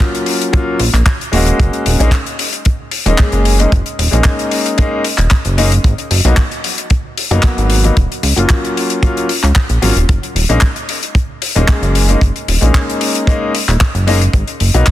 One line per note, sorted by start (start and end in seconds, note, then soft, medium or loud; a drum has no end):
0.00 0.50 F#3 medium
0.00 0.50 A#3 medium
0.00 0.51 C#4 medium
0.00 0.51 F4 medium
0.00 kick loud
0.00 clap loud
0.00 closed hi-hat medium
0.15 closed hi-hat medium
0.26 open hi-hat loud
0.42 closed hi-hat medium
0.53 0.77 F#3 loud
0.53 0.77 A#3 medium
0.53 0.77 C#4 medium
0.53 0.77 F4 loud
0.53 kick loud
0.53 closed hi-hat medium
0.80 0.90 A#1 loud
0.80 open hi-hat loud
0.93 1.03 A#1 medium
0.93 clap soft
0.93 closed hi-hat medium
1.06 kick loud
1.06 clap loud
1.06 closed hi-hat medium
1.21 closed hi-hat medium
1.32 1.52 D#1 medium
1.32 1.96 G#3 loud
1.32 1.97 A#3 medium
1.32 1.97 C#4 medium
1.32 1.97 F#4 loud
1.32 open hi-hat loud
1.47 closed hi-hat medium
1.59 1.70 F#1 loud
1.59 kick loud
1.59 closed hi-hat medium
1.73 closed hi-hat soft
1.86 1.96 D#1 medium
1.86 open hi-hat loud
2.00 2.09 A#1 loud
2.00 2.09 G#3 loud
2.00 2.09 A#3 medium
2.00 2.09 C#4 medium
2.00 2.09 D#4 loud
2.00 closed hi-hat medium
2.11 kick loud
2.11 clap loud
2.11 closed hi-hat medium
2.26 closed hi-hat medium
2.39 open hi-hat loud
2.53 closed hi-hat medium
2.65 kick loud
2.65 closed hi-hat medium
2.91 open hi-hat loud
3.06 3.15 D#1 loud
3.06 3.15 G#3 medium
3.06 3.15 A#3 medium
3.06 3.15 C#4 medium
3.06 3.16 D#4 loud
3.06 closed hi-hat medium
3.18 3.56 G#3 medium
3.18 3.56 A#3 medium
3.18 3.56 C#4 medium
3.18 3.56 G#4 medium
3.18 kick loud
3.18 clap loud
3.18 closed hi-hat medium
3.32 3.66 F#1 loud
3.32 closed hi-hat medium
3.45 open hi-hat loud
3.59 3.68 G#3 medium
3.59 3.68 A#3 medium
3.59 3.68 C#4 medium
3.59 3.69 D#4 medium
3.59 closed hi-hat medium
3.72 3.82 F#1 loud
3.72 kick loud
3.72 closed hi-hat medium
3.86 closed hi-hat medium
3.98 4.09 D#1 medium
3.98 open hi-hat loud
4.11 4.21 A#1 medium
4.11 4.74 G#3 medium
4.11 4.75 A#3 medium
4.11 4.75 C#4 medium
4.11 4.76 D#4 medium
4.11 closed hi-hat medium
4.24 kick loud
4.24 clap loud
4.24 closed hi-hat medium
4.39 closed hi-hat medium
4.51 open hi-hat loud
4.66 closed hi-hat medium
4.78 5.01 G#3 loud
4.78 5.02 A#3 medium
4.78 5.02 C#4 medium
4.78 5.02 D#4 loud
4.78 kick loud
4.78 closed hi-hat medium
5.04 open hi-hat loud
5.18 5.28 D#1 loud
5.18 clap soft
5.18 closed hi-hat medium
5.31 kick loud
5.31 clap loud
5.31 closed hi-hat medium
5.45 5.79 F#1 loud
5.45 closed hi-hat medium
5.57 5.68 G#3 loud
5.57 5.68 A#3 medium
5.57 5.68 C#4 medium
5.57 5.68 D#4 loud
5.57 open hi-hat loud
5.72 closed hi-hat medium
5.84 5.94 G#1 loud
5.84 kick loud
5.84 closed hi-hat medium
5.98 closed hi-hat medium
6.11 6.21 F#1 medium
6.11 open hi-hat loud
6.25 6.34 B1 loud
6.25 6.34 F#3 loud
6.25 6.34 A#3 medium
6.25 6.34 B3 medium
6.25 6.34 D#4 loud
6.25 closed hi-hat medium
6.37 kick loud
6.37 clap loud
6.37 closed hi-hat medium
6.51 closed hi-hat medium
6.64 open hi-hat loud
6.78 closed hi-hat medium
6.90 kick loud
6.90 closed hi-hat medium
7.18 open hi-hat loud
7.31 7.40 F#1 loud
7.31 7.40 F#3 medium
7.31 7.40 A#3 medium
7.31 7.40 B3 medium
7.31 7.40 D#4 loud
7.31 closed hi-hat medium
7.43 7.81 F#3 medium
7.43 7.81 A#3 medium
7.43 7.81 B3 medium
7.43 kick loud
7.43 clap loud
7.43 closed hi-hat medium
7.57 7.91 G#1 loud
7.57 closed hi-hat medium
7.70 open hi-hat loud
7.84 7.93 F#3 medium
7.84 7.93 A#3 medium
7.84 7.93 B3 medium
7.84 7.94 D#4 medium
7.84 closed hi-hat medium
7.97 8.07 D#1 medium
7.97 kick loud
7.97 closed hi-hat medium
8.12 closed hi-hat medium
8.23 8.33 C#2 medium
8.23 open hi-hat loud
8.36 8.46 F#1 loud
8.36 8.99 F#3 medium
8.36 9.00 A#3 medium
8.36 9.00 C#4 medium
8.36 9.00 F4 medium
8.36 closed hi-hat medium
8.49 kick loud
8.49 clap loud
8.49 closed hi-hat medium
8.65 closed hi-hat medium
8.77 open hi-hat medium
8.90 closed hi-hat medium
9.02 9.26 F#3 medium
9.02 9.26 A#3 medium
9.02 9.27 C#4 medium
9.02 9.27 F4 loud
9.02 kick loud
9.02 closed hi-hat medium
9.17 closed hi-hat medium
9.29 open hi-hat loud
9.43 9.52 C#2 loud
9.43 clap soft
9.43 closed hi-hat medium
9.56 kick loud
9.56 clap loud
9.56 closed hi-hat medium
9.69 9.79 A#1 loud
9.69 closed hi-hat medium
9.82 9.92 G#1 medium
9.82 9.92 F#3 loud
9.82 9.93 A#3 medium
9.82 9.93 C#4 medium
9.82 9.93 F4 loud
9.82 open hi-hat loud
9.96 10.05 D#1 medium
9.96 closed hi-hat medium
10.09 10.19 F#1 loud
10.09 kick loud
10.09 closed hi-hat medium
10.23 closed hi-hat medium
10.35 10.46 D#1 medium
10.35 open hi-hat loud
10.49 10.59 A#1 loud
10.49 10.58 G#3 loud
10.49 10.59 A#3 medium
10.49 10.59 C#4 medium
10.49 10.59 D#4 loud
10.49 closed hi-hat medium
10.61 kick loud
10.61 clap loud
10.61 closed hi-hat medium
10.76 closed hi-hat medium
10.89 open hi-hat loud
11.03 closed hi-hat medium
11.15 kick loud
11.15 closed hi-hat medium
11.42 open hi-hat loud
11.55 11.65 D#1 loud
11.55 11.65 G#3 medium
11.55 11.65 A#3 medium
11.55 11.65 C#4 medium
11.55 11.65 D#4 loud
11.55 closed hi-hat medium
11.68 12.05 G#3 medium
11.68 12.06 A#3 medium
11.68 12.06 C#4 medium
11.68 12.06 G#4 medium
11.68 kick loud
11.68 clap loud
11.68 closed hi-hat medium
11.82 12.16 F#1 loud
11.82 closed hi-hat soft
11.95 open hi-hat loud
12.09 12.18 G#3 medium
12.09 12.18 A#3 medium
12.09 12.18 C#4 medium
12.09 12.18 D#4 medium
12.09 closed hi-hat medium
12.21 12.32 F#1 medium
12.21 kick loud
12.21 closed hi-hat medium
12.36 closed hi-hat soft
12.48 12.58 D#1 medium
12.48 open hi-hat loud
12.61 12.71 A#1 loud
12.61 13.24 G#3 medium
12.61 13.24 A#3 medium
12.61 13.25 C#4 medium
12.61 13.25 D#4 medium
12.61 closed hi-hat medium
12.74 kick loud
12.74 clap loud
12.74 closed hi-hat medium
12.90 closed hi-hat medium
13.01 open hi-hat loud
13.15 closed hi-hat medium
13.27 13.51 G#3 loud
13.27 13.51 A#3 medium
13.27 13.51 C#4 medium
13.27 13.51 D#4 loud
13.27 kick loud
13.27 closed hi-hat medium
13.55 open hi-hat loud
13.68 13.77 D#1 loud
13.68 clap soft
13.68 closed hi-hat medium
13.81 kick loud
13.81 clap loud
13.81 closed hi-hat medium
13.95 14.28 F#1 loud
13.95 closed hi-hat medium
14.07 14.17 G#3 medium
14.07 14.17 A#3 medium
14.07 14.18 C#4 medium
14.07 14.18 D#4 loud
14.07 open hi-hat loud
14.22 closed hi-hat medium
14.33 14.44 G#1 loud
14.33 kick loud
14.33 closed hi-hat medium
14.47 closed hi-hat medium
14.60 14.71 F#1 medium
14.60 open hi-hat loud
14.74 14.83 B1 loud
14.74 14.83 F#3 loud
14.74 14.83 A#3 medium
14.74 14.84 B3 medium
14.74 14.84 D#4 loud
14.74 closed hi-hat medium
14.86 kick loud
14.86 clap loud
14.86 closed hi-hat medium